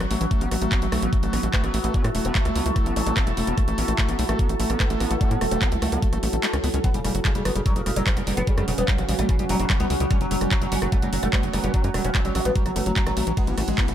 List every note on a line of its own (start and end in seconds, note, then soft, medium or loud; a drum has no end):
0.00 0.06 A1 medium
0.00 6.83 F#3 medium
0.00 0.06 F#3 medium
0.00 1.48 C#4 medium
0.00 1.27 F#4 medium
0.00 6.83 F#4 medium
0.00 1.43 F#5 medium
0.00 cross-stick medium
0.00 closed hi-hat medium
0.11 0.16 A1 loud
0.11 0.19 A3 medium
0.11 open hi-hat medium
0.21 0.27 A1 loud
0.21 0.26 E3 loud
0.21 closed hi-hat medium
0.31 0.43 A3 loud
0.31 7.83 E4 medium
0.31 kick loud
0.31 closed hi-hat medium
0.41 0.47 A1 medium
0.41 0.50 B3 medium
0.41 closed hi-hat medium
0.51 0.57 A1 loud
0.51 0.57 A3 medium
0.51 cross-stick soft
0.51 open hi-hat loud
0.62 0.67 A1 medium
0.62 0.73 A3 loud
0.62 closed hi-hat medium
0.67 7.49 A4 medium
0.72 0.80 B3 medium
0.72 kick loud
0.72 clap loud
0.72 closed hi-hat medium
0.82 0.88 A1 medium
0.82 0.88 A3 medium
0.82 7.39 A5 medium
0.82 closed hi-hat medium
0.92 0.98 B1 loud
0.92 1.04 A3 loud
0.92 cross-stick medium
0.92 open hi-hat loud
1.02 1.08 A1 medium
1.02 1.11 B3 medium
1.02 closed hi-hat medium
1.13 1.18 A3 medium
1.13 kick loud
1.13 closed hi-hat medium
1.23 1.29 A1 medium
1.23 1.35 A3 loud
1.23 closed hi-hat medium
1.33 1.39 A1 loud
1.33 1.41 B3 medium
1.33 cross-stick soft
1.33 open hi-hat loud
1.43 1.49 A1 loud
1.43 1.49 A3 medium
1.43 closed hi-hat medium
1.53 1.65 A3 loud
1.53 1.92 B3 loud
1.53 kick loud
1.53 clap loud
1.53 closed hi-hat medium
1.64 1.69 A1 medium
1.64 1.72 B3 medium
1.64 cross-stick soft
1.64 closed hi-hat medium
1.74 1.80 A1 loud
1.74 1.79 A3 medium
1.74 open hi-hat medium
1.84 1.90 A1 loud
1.84 1.96 A3 loud
1.84 closed hi-hat medium
1.94 2.03 B3 medium
1.94 2.05 C#4 loud
1.94 kick loud
1.94 closed hi-hat medium
2.04 2.10 A2 medium
2.04 2.10 A3 medium
2.04 cross-stick medium
2.04 closed hi-hat medium
2.15 2.20 E1 loud
2.15 2.26 A3 loud
2.15 open hi-hat loud
2.25 2.31 E1 medium
2.25 2.36 B3 medium
2.25 2.33 B3 medium
2.25 closed hi-hat medium
2.35 2.41 A3 medium
2.35 kick loud
2.35 clap loud
2.35 closed hi-hat medium
2.45 2.51 C#2 medium
2.45 2.57 A3 loud
2.45 cross-stick soft
2.45 closed hi-hat medium
2.56 2.61 C#2 loud
2.56 2.64 B3 medium
2.56 open hi-hat medium
2.66 2.71 C#2 medium
2.66 2.71 A3 medium
2.66 closed hi-hat medium
2.76 2.88 A3 loud
2.76 kick loud
2.76 cross-stick soft
2.76 closed hi-hat medium
2.86 2.92 A1 medium
2.86 2.94 B3 medium
2.86 closed hi-hat medium
2.96 3.02 A1 loud
2.96 3.02 A3 medium
2.96 3.03 C#4 medium
2.96 open hi-hat loud
3.07 3.12 A1 loud
3.07 3.18 A3 loud
3.07 3.13 C#4 medium
3.07 closed hi-hat medium
3.17 3.25 B3 medium
3.17 kick loud
3.17 cross-stick medium
3.17 clap loud
3.17 closed hi-hat medium
3.27 3.33 E1 medium
3.27 3.33 A3 medium
3.27 closed hi-hat medium
3.37 3.43 E1 loud
3.37 3.49 A3 loud
3.37 open hi-hat medium
3.47 3.53 E1 medium
3.47 3.56 B3 medium
3.47 closed hi-hat medium
3.58 3.63 A3 medium
3.58 kick loud
3.58 cross-stick soft
3.58 closed hi-hat medium
3.68 3.74 A1 medium
3.68 3.79 A3 loud
3.68 closed hi-hat medium
3.78 3.84 A1 loud
3.78 3.86 B3 medium
3.78 open hi-hat loud
3.88 3.94 A1 medium
3.88 3.94 A3 medium
3.88 cross-stick soft
3.88 closed hi-hat medium
3.98 4.10 A3 loud
3.98 kick loud
3.98 clap loud
3.98 closed hi-hat medium
4.09 4.14 A1 medium
4.09 4.17 B3 medium
4.09 closed hi-hat medium
4.19 4.25 B1 loud
4.19 4.24 A3 medium
4.19 open hi-hat medium
4.29 4.35 A1 medium
4.29 4.41 A3 loud
4.29 cross-stick medium
4.29 closed hi-hat medium
4.39 4.48 B3 medium
4.39 kick loud
4.39 closed hi-hat medium
4.49 4.55 A1 medium
4.49 4.55 A3 medium
4.49 closed hi-hat medium
4.60 4.65 A1 loud
4.60 4.71 A3 loud
4.60 open hi-hat loud
4.70 4.76 A1 medium
4.70 4.78 B3 medium
4.70 cross-stick soft
4.70 closed hi-hat medium
4.80 4.86 A3 medium
4.80 5.19 B3 loud
4.80 kick loud
4.80 clap loud
4.80 closed hi-hat medium
4.90 4.96 A1 medium
4.90 5.02 A3 loud
4.90 closed hi-hat medium
5.00 5.06 A1 loud
5.00 5.09 B3 medium
5.00 cross-stick soft
5.00 open hi-hat medium
5.11 5.16 A1 medium
5.11 5.16 A3 medium
5.11 closed hi-hat medium
5.21 5.33 A3 loud
5.21 5.32 C#4 medium
5.21 kick loud
5.21 closed hi-hat medium
5.31 5.37 A2 medium
5.31 5.39 B3 medium
5.31 closed hi-hat medium
5.41 5.47 E1 loud
5.41 5.47 A3 medium
5.41 cross-stick medium
5.41 open hi-hat loud
5.51 5.57 E1 medium
5.51 5.63 A3 loud
5.51 5.58 B3 medium
5.51 closed hi-hat medium
5.62 5.70 B3 medium
5.62 5.68 B3 medium
5.62 kick loud
5.62 clap loud
5.62 closed hi-hat medium
5.72 5.78 C#2 medium
5.72 5.77 A3 medium
5.72 closed hi-hat medium
5.82 5.88 C#2 loud
5.82 5.94 A3 loud
5.82 5.89 A3 medium
5.82 cross-stick soft
5.82 open hi-hat medium
5.92 5.98 C#2 medium
5.92 5.99 A3 medium
5.92 6.01 B3 medium
5.92 closed hi-hat medium
6.02 6.08 A3 medium
6.02 kick loud
6.02 closed hi-hat medium
6.13 6.18 A1 medium
6.13 6.18 A3 loud
6.13 cross-stick soft
6.13 closed hi-hat medium
6.23 6.29 A1 loud
6.23 6.28 A3 medium
6.23 open hi-hat loud
6.33 6.39 A1 medium
6.33 6.36 A3 medium
6.33 closed hi-hat medium
6.43 6.47 G#3 loud
6.43 clap loud
6.43 closed hi-hat medium
6.53 6.59 C#2 medium
6.53 6.57 C#4 loud
6.53 cross-stick medium
6.53 closed hi-hat medium
6.64 6.69 C#2 loud
6.64 6.69 B3 loud
6.64 open hi-hat medium
6.74 6.80 C#2 loud
6.74 6.79 C#4 medium
6.74 closed hi-hat medium
6.84 13.95 F#3 medium
6.84 6.90 F#3 medium
6.84 6.88 B3 medium
6.84 13.95 C#4 medium
6.84 13.95 F#4 medium
6.84 kick loud
6.84 closed hi-hat medium
6.94 7.00 F#1 medium
6.94 6.99 C#3 medium
6.94 7.00 G3 medium
6.94 closed hi-hat medium
7.04 7.10 F#1 medium
7.04 7.09 C#3 medium
7.04 7.13 G3 medium
7.04 13.95 F#4 medium
7.04 cross-stick soft
7.04 open hi-hat loud
7.15 7.20 F#1 loud
7.15 7.20 F#3 medium
7.15 closed hi-hat medium
7.25 7.29 C#3 medium
7.25 7.30 G3 medium
7.25 kick loud
7.25 clap loud
7.25 closed hi-hat medium
7.35 7.41 F#1 medium
7.35 7.40 C#3 medium
7.35 7.43 G3 medium
7.35 closed hi-hat medium
7.45 7.51 G1 loud
7.45 7.51 F#3 medium
7.45 7.50 B3 medium
7.45 cross-stick medium
7.45 open hi-hat loud
7.52 7.61 F#1 loud
7.52 7.60 C#3 medium
7.52 7.61 G3 medium
7.52 13.95 F#5 medium
7.52 closed hi-hat medium
7.66 7.70 F#3 loud
7.66 7.74 G3 medium
7.66 kick loud
7.66 closed hi-hat medium
7.76 7.82 F#1 medium
7.76 7.80 C#3 medium
7.76 7.82 F#3 medium
7.76 closed hi-hat medium
7.86 7.92 F#1 loud
7.86 7.91 C#3 medium
7.86 7.92 G3 medium
7.86 cross-stick soft
7.86 open hi-hat loud
7.96 8.02 F#1 medium
7.96 8.01 F#3 loud
7.96 8.05 G3 medium
7.96 closed hi-hat medium
8.07 8.11 C#3 medium
8.07 8.12 F#3 medium
8.07 8.45 B3 loud
8.07 kick loud
8.07 clap loud
8.07 closed hi-hat medium
8.17 8.22 F#1 medium
8.17 8.21 C#3 medium
8.17 8.22 G3 medium
8.17 cross-stick soft
8.17 closed hi-hat medium
8.27 8.33 F#1 loud
8.27 8.31 C#3 medium
8.27 8.35 G3 medium
8.27 open hi-hat medium
8.37 8.43 F#1 loud
8.37 8.43 F#3 medium
8.37 8.42 B3 loud
8.37 closed hi-hat medium
8.47 8.52 C#3 medium
8.47 8.53 G3 medium
8.47 8.59 C#4 loud
8.47 kick loud
8.47 closed hi-hat medium
8.58 8.63 F#2 medium
8.58 8.62 C#3 medium
8.58 8.66 G3 medium
8.58 cross-stick medium
8.58 closed hi-hat medium
8.68 8.73 E1 loud
8.68 8.72 C#3 medium
8.68 8.73 F#3 medium
8.68 open hi-hat loud
8.78 8.84 E1 medium
8.78 8.84 G3 medium
8.78 8.89 B3 medium
8.78 8.82 B3 medium
8.78 closed hi-hat medium
8.88 8.93 C#3 medium
8.88 8.97 G3 medium
8.88 kick loud
8.88 clap loud
8.88 closed hi-hat medium
8.98 9.04 A1 medium
8.98 9.03 C#3 medium
8.98 9.04 F#3 medium
8.98 cross-stick soft
8.98 closed hi-hat medium
9.09 9.14 A1 loud
9.09 9.13 C#3 medium
9.09 9.14 G3 medium
9.09 open hi-hat loud
9.19 9.25 A1 medium
9.19 9.27 G3 medium
9.19 9.23 A3 medium
9.19 closed hi-hat medium
9.29 9.33 C#3 medium
9.29 9.35 F#3 medium
9.29 kick loud
9.29 cross-stick soft
9.29 closed hi-hat medium
9.39 9.45 F#1 medium
9.39 9.44 C#3 medium
9.39 9.45 G3 medium
9.39 closed hi-hat medium
9.49 9.55 F#1 medium
9.49 9.54 F#3 loud
9.49 9.58 G3 medium
9.49 9.56 C#4 medium
9.49 open hi-hat loud
9.60 9.65 F#1 medium
9.60 9.64 C#3 medium
9.60 9.65 F#3 medium
9.60 9.66 C#4 medium
9.60 closed hi-hat medium
9.70 9.74 C#3 medium
9.70 9.75 G3 medium
9.70 kick loud
9.70 cross-stick medium
9.70 clap loud
9.70 closed hi-hat medium
9.80 9.86 C#2 medium
9.80 9.88 G3 medium
9.80 9.84 B3 medium
9.80 closed hi-hat medium
9.90 9.96 C#2 loud
9.90 9.95 C#3 medium
9.90 9.96 F#3 medium
9.90 open hi-hat medium
10.00 10.06 C#2 loud
10.00 10.05 C#3 medium
10.00 10.06 G3 medium
10.00 closed hi-hat medium
10.11 10.19 G3 medium
10.11 10.15 C#4 loud
10.11 kick loud
10.11 cross-stick soft
10.11 closed hi-hat medium
10.21 10.27 F#1 medium
10.21 10.25 F#3 medium
10.21 10.26 F#3 medium
10.21 closed hi-hat medium
10.31 10.37 F#1 loud
10.31 10.35 F#3 medium
10.31 10.37 G3 medium
10.31 open hi-hat loud
10.41 10.47 F#1 medium
10.41 10.50 G3 medium
10.41 cross-stick soft
10.41 closed hi-hat medium
10.51 10.56 F#3 medium
10.51 10.57 F#3 medium
10.51 kick loud
10.51 clap loud
10.51 closed hi-hat medium
10.62 10.67 F#1 medium
10.62 10.66 F#3 medium
10.62 10.67 G3 medium
10.62 closed hi-hat medium
10.72 10.78 G1 loud
10.72 10.80 G3 medium
10.72 10.76 C#4 medium
10.72 open hi-hat loud
10.82 10.88 F#1 medium
10.82 10.88 F#3 medium
10.82 10.86 F#3 medium
10.82 cross-stick medium
10.82 closed hi-hat medium
10.92 10.98 G3 medium
10.92 10.97 A3 medium
10.92 kick loud
10.92 closed hi-hat medium
11.02 11.08 F#1 medium
11.02 11.07 F#3 medium
11.02 11.11 G3 medium
11.02 closed hi-hat medium
11.13 11.18 F#1 loud
11.13 11.18 F#3 medium
11.13 11.17 F#3 medium
11.13 open hi-hat loud
11.23 11.29 F#1 medium
11.23 11.28 G3 medium
11.23 11.27 A3 loud
11.23 cross-stick soft
11.23 closed hi-hat medium
11.33 11.37 F#3 medium
11.33 11.41 G3 medium
11.33 11.72 B3 loud
11.33 kick loud
11.33 clap loud
11.33 closed hi-hat medium
11.43 11.49 F#1 medium
11.43 11.49 F#3 medium
11.43 11.48 F#3 medium
11.43 closed hi-hat medium
11.53 11.59 F#1 loud
11.53 11.58 F#3 medium
11.53 11.59 G3 medium
11.53 cross-stick soft
11.53 open hi-hat loud
11.64 11.69 F#1 loud
11.64 11.72 G3 medium
11.64 11.68 C#4 loud
11.64 closed hi-hat medium
11.74 11.79 F#3 medium
11.74 11.78 F#3 medium
11.74 11.85 C#4 loud
11.74 kick loud
11.74 closed hi-hat medium
11.84 11.90 F#2 medium
11.84 11.89 F#3 medium
11.84 11.90 G3 medium
11.84 closed hi-hat medium
11.94 12.00 E1 loud
11.94 11.99 F#3 medium
11.94 12.03 G3 medium
11.94 cross-stick medium
11.94 open hi-hat loud
12.04 12.10 E1 medium
12.04 12.10 F#3 medium
12.04 12.11 B3 medium
12.04 12.09 C#4 medium
12.04 closed hi-hat medium
12.15 12.19 F#3 medium
12.15 12.20 G3 medium
12.15 12.21 B3 medium
12.15 kick loud
12.15 clap loud
12.15 closed hi-hat medium
12.25 12.31 A1 medium
12.25 12.29 F#3 medium
12.25 12.33 G3 medium
12.25 closed hi-hat medium
12.35 12.41 A1 medium
12.35 12.41 F#3 medium
12.35 12.40 F#3 medium
12.35 12.42 A3 medium
12.35 cross-stick soft
12.35 open hi-hat loud
12.45 12.51 A1 medium
12.45 12.51 G3 medium
12.45 12.52 A3 medium
12.45 12.50 B3 loud
12.45 closed hi-hat medium
12.55 12.60 F#3 medium
12.55 12.64 G3 medium
12.55 kick loud
12.55 closed hi-hat medium
12.66 12.71 G1 medium
12.66 12.71 F#3 medium
12.66 12.70 F#3 medium
12.66 cross-stick soft
12.66 closed hi-hat medium
12.76 12.82 G1 loud
12.76 12.79 F#3 loud
12.76 12.80 A3 loud
12.76 open hi-hat loud
12.86 12.92 G1 medium
12.86 12.92 F#3 medium
12.86 12.91 F#3 medium
12.86 closed hi-hat medium
12.96 13.02 F#3 medium
12.96 13.01 F#3 medium
12.96 kick loud
12.96 clap loud
12.96 closed hi-hat medium
13.07 13.12 A1 medium
13.07 13.12 F#3 medium
13.07 13.11 F#3 loud
13.07 cross-stick medium
13.07 closed hi-hat medium
13.17 13.22 A1 loud
13.17 13.21 F#3 medium
13.17 13.25 A3 medium
13.17 open hi-hat medium
13.27 13.33 A1 loud
13.27 13.33 E3 loud
13.27 13.31 F#3 medium
13.27 closed hi-hat medium
13.37 13.49 G#3 medium
13.37 13.42 B3 loud
13.37 13.95 E4 medium
13.37 kick loud
13.37 closed hi-hat medium
13.37 ride medium
13.47 13.53 A1 medium
13.47 13.52 E3 medium
13.47 13.56 B3 medium
13.47 closed hi-hat medium
13.55 13.63 A1 loud
13.55 13.62 E3 medium
13.55 13.63 A3 medium
13.55 13.95 A5 medium
13.55 cross-stick soft
13.55 open hi-hat loud
13.55 ride medium
13.62 13.95 A4 medium
13.68 13.74 A1 medium
13.68 13.79 G#3 medium
13.68 closed hi-hat medium
13.78 13.82 E3 medium
13.78 13.86 B3 medium
13.78 kick loud
13.78 clap loud
13.78 closed hi-hat medium
13.88 13.94 A1 medium
13.88 13.93 E3 medium
13.88 13.94 A3 medium
13.88 closed hi-hat medium